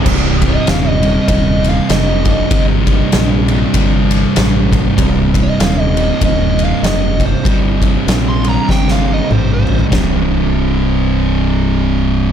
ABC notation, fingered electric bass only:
X:1
M:4/4
L:1/8
Q:"Swing" 1/4=97
K:Cm
V:1 name="Fingered electric bass" clef=bass
C,,,2 E,,,2 E,,,2 F,,,2 | G,,,2 B,,,2 G,,,2 =A,,,2 | C,,,2 E,,,2 E,,,2 F,,,2 | G,,,2 B,,,2 G,,,2 =A,,,2 |
C,,,8 |]